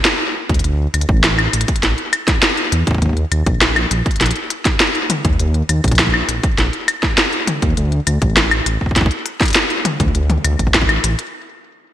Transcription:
0.05 snare, closed hi-hat
0.49 D2, kick, closed hi-hat
0.54 closed hi-hat
0.59 closed hi-hat
0.64 D2, closed hi-hat
0.94 D2, closed hi-hat, claves
1.01 closed hi-hat
1.09 A1, kick
1.24 snare, closed hi-hat
1.39 closed hi-hat, claves
1.53 A1, closed hi-hat
1.61 closed hi-hat
1.68 kick, closed hi-hat
1.76 closed hi-hat
1.83 A1, snare, closed hi-hat
1.98 closed hi-hat
2.13 closed hi-hat, claves
2.28 kick, snare, closed hi-hat
2.43 snare, closed hi-hat
2.57 closed hi-hat
2.72 E2, closed hi-hat
2.87 kick, closed hi-hat
2.91 kick
2.94 kick
2.98 kick
3.02 D#2, kick, closed hi-hat
3.06 kick
3.09 kick
3.13 kick, closed hi-hat
3.32 D#2, closed hi-hat, claves
3.46 A#1, kick, closed hi-hat
3.61 snare, closed hi-hat
3.76 closed hi-hat, claves
3.91 A#1, closed hi-hat
4.06 kick, closed hi-hat
4.11 closed hi-hat
4.16 closed hi-hat
4.21 A#1, snare, closed hi-hat
4.26 closed hi-hat
4.31 closed hi-hat
4.36 closed hi-hat
4.50 closed hi-hat
4.65 kick, snare, closed hi-hat
4.80 snare, closed hi-hat
4.95 closed hi-hat
5.10 closed hi-hat, high tom
5.25 D#2, kick, closed hi-hat
5.39 D#2, closed hi-hat
5.54 closed hi-hat
5.69 D#2, closed hi-hat, claves
5.84 A#1, kick, closed hi-hat
5.88 kick, closed hi-hat
5.92 closed hi-hat
5.95 snare, closed hi-hat
5.99 kick, closed hi-hat
6.06 kick, closed hi-hat
6.10 closed hi-hat, claves
6.29 A#1, closed hi-hat
6.43 kick, closed hi-hat
6.58 A#1, snare, closed hi-hat
6.73 closed hi-hat
6.88 closed hi-hat, claves
7.03 kick, snare
7.18 snare, closed hi-hat
7.33 closed hi-hat
7.47 closed hi-hat, high tom
7.62 D#2, kick, closed hi-hat
7.77 D2, closed hi-hat
7.92 closed hi-hat
8.07 D2, closed hi-hat, claves
8.22 A1, kick, closed hi-hat
8.37 snare, closed hi-hat
8.51 closed hi-hat, claves
8.66 A1, closed hi-hat
8.81 kick
8.86 kick
8.91 kick
8.96 A1, kick, snare, closed hi-hat
9.01 kick
9.06 kick
9.11 closed hi-hat
9.26 closed hi-hat
9.41 kick, snare, closed hi-hat
9.43 closed hi-hat
9.45 closed hi-hat
9.48 closed hi-hat
9.50 closed hi-hat
9.53 snare, closed hi-hat
9.55 closed hi-hat
9.70 closed hi-hat
9.85 closed hi-hat, high tom
10.00 D2, kick, closed hi-hat
10.15 D2, closed hi-hat
10.30 closed hi-hat, high tom
10.44 D2, closed hi-hat, claves
10.59 A1, kick, closed hi-hat
10.67 kick
10.74 kick, snare, closed hi-hat
10.82 kick
10.89 closed hi-hat, claves
11.04 A1, closed hi-hat
11.19 closed hi-hat

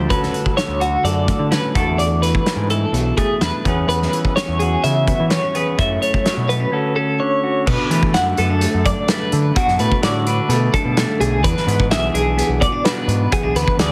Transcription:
Already playing: G3 D4 A4
0.10 D2 C#4 F#4 A4 B4, kick, closed hi-hat
0.23 snare
0.34 closed hi-hat
0.46 kick
0.57 D3 C#5, snare, closed hi-hat
0.68 D2
0.80 F#4, closed hi-hat
1.04 F#2 A4 D5, closed hi-hat
1.26 A2, kick, closed hi-hat
1.39 D3
1.51 C#4 B4, snare, closed hi-hat
1.74 E2 A3 D4 F#4 A4, kick, closed hi-hat
1.98 D5, closed hi-hat
2.22 E3 B4, closed hi-hat
2.35 kick
2.46 D4, snare, closed hi-hat
2.56 G#2
2.70 E4 A4, closed hi-hat
2.93 B1 B2, closed hi-hat
3.17 A3 G#4, kick, closed hi-hat
3.41 E2 D4 B4, snare, closed hi-hat
3.65 E2 B3 C#4 G#4, kick, closed hi-hat
3.87 E2 B3 B4, closed hi-hat
4.02 snare
4.13 E3, closed hi-hat
4.25 kick
4.36 C#4 C#5, snare, closed hi-hat
4.48 E2
4.59 F#4 G#4, closed hi-hat
4.84 E2 C#3 E5, closed hi-hat
5.07 B3, kick, closed hi-hat
5.20 E3
5.30 B3 C#5, snare, closed hi-hat
5.42 C#4
5.54 E2 B3 C#4 G#4 B4, closed hi-hat
5.78 F#2 A3 C#4 E4 E5, kick, closed hi-hat
6.02 A3 C#5, closed hi-hat
6.14 kick
6.25 F#3, snare, closed hi-hat
6.37 B2
6.48 B3 B4, closed hi-hat
6.60 C#4
6.71 D2 C#4 F#4 A4
6.96 C#4 A4
7.20 D3 C#5
7.44 F#4
7.66 B2 B3 B4, kick, crash
7.79 D4
7.90 E3 A3, closed hi-hat
8.03 kick
8.14 F#2 D3 E4 F#5, snare, closed hi-hat
8.26 F#4
8.37 F#2 B3 A4, closed hi-hat
8.50 D4
8.61 A3, closed hi-hat
8.74 F#2
8.85 F#2 D4 D5, kick, closed hi-hat
9.08 A3 B4, snare, closed hi-hat
9.32 D3, closed hi-hat
9.55 B2 D4 F#4, kick, closed hi-hat
9.68 F#2, snare
9.79 A2 A3 B4, closed hi-hat
9.92 kick
10.02 A2 D3 F#4 D5, snare, closed hi-hat
10.26 D4 B4, closed hi-hat
10.49 B2 A3, closed hi-hat
10.74 F#2 D4 A4, kick, closed hi-hat
10.85 B2
10.97 A3, snare, closed hi-hat
11.20 B1 G#4, closed hi-hat
11.44 E2 D4 B4, kick, closed hi-hat
11.57 snare
11.67 G#2 B3, closed hi-hat
11.80 kick
11.90 B1 E3 G#4 E5, snare, closed hi-hat
12.14 B1 D4 G#4, closed hi-hat
12.38 B3, closed hi-hat
12.48 B1
12.60 B2 B3 D5, kick, closed hi-hat
12.72 D4
12.85 B3 B4, snare, closed hi-hat
13.08 G#2, closed hi-hat
13.31 E2 B3 G#4, kick, closed hi-hat
13.43 B1 D4
13.54 D2 B3 B4, closed hi-hat
13.68 kick
13.77 D2 E3 G#4 D5, snare, closed hi-hat

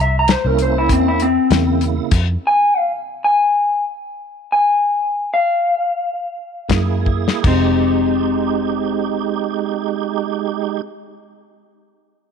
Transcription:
Already playing: C2
0.01 E5
0.19 A#5
0.28 C5, snare, closed hi-hat
0.45 C2 A#3 C#4 E4 A#4
0.59 C5, closed hi-hat
0.78 E4
0.89 E2 C4, kick, closed hi-hat
1.08 E4
1.20 C4, closed hi-hat
1.51 E2 C#3 A#3 E4, snare, closed hi-hat
1.81 closed hi-hat
2.11 F2, kick, closed hi-hat, crash
2.47 G#5
2.77 F5
3.24 G#5
4.52 G#5
5.34 F5
6.68 F#2 A#3 E4 G#4, kick, snare, closed hi-hat
7.06 kick
7.28 snare
7.42 F1 G#3 D#4 G4, kick, crash
7.47 C4

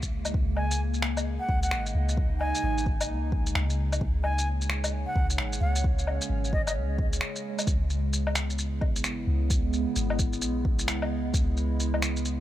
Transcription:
Already playing: C#2 C#3 G#3 A#3 E4 D#5
0.02 kick, shaker
0.25 low woodblock, shaker
0.33 C#2 C#3, kick
0.56 G#3 G#5, low woodblock
0.71 shaker
0.94 shaker
1.02 finger snap
1.10 D#5
1.17 low woodblock, shaker
1.40 D#4 F#5
1.49 C#2, kick
1.63 F#5, shaker
1.71 G#1, finger snap
1.86 shaker
1.94 C#2
2.09 shaker
2.17 kick
2.40 G#5, low woodblock
2.55 shaker
2.63 G#1
2.78 shaker
2.86 kick
3.01 low woodblock, shaker
3.09 C#2
3.32 kick
3.46 shaker
3.55 C#2, finger snap
3.70 shaker
3.92 low woodblock, shaker
4.01 C#2, kick
4.06 C#5
4.24 G#5, low woodblock
4.38 shaker
4.61 shaker
4.70 finger snap
4.84 low woodblock, shaker
5.07 F#5
5.15 C#2, kick
5.29 C#4, shaker
5.38 G#1, finger snap
5.53 shaker
5.61 C#2 F#5
5.75 shaker
5.84 kick
5.99 shaker
6.07 low woodblock
6.21 shaker
6.29 G#1
6.44 shaker
6.53 D#5, kick
6.66 D#5, low woodblock, shaker
6.75 C#2
6.98 kick
7.13 shaker
7.21 finger snap
7.36 shaker
7.59 low woodblock, shaker
7.67 C#2, kick, shaker
7.85 B3
7.90 shaker
8.08 E4
8.13 shaker
8.27 low woodblock
8.35 finger snap, shaker
8.50 shaker
8.58 shaker
8.81 B1 D#5, kick, low woodblock
8.96 shaker
9.04 G#1, finger snap, shaker
9.27 C#2
9.50 kick, shaker
9.73 shaker
9.96 G#1, shaker
10.10 low woodblock
10.19 kick, shaker
10.33 shaker
10.41 B1, shaker
10.65 kick
10.79 shaker
10.88 C#2, finger snap, shaker
11.02 low woodblock
11.34 C#2, kick, shaker
11.57 shaker
11.80 shaker
11.94 low woodblock
12.02 finger snap, shaker
12.17 shaker
12.25 shaker

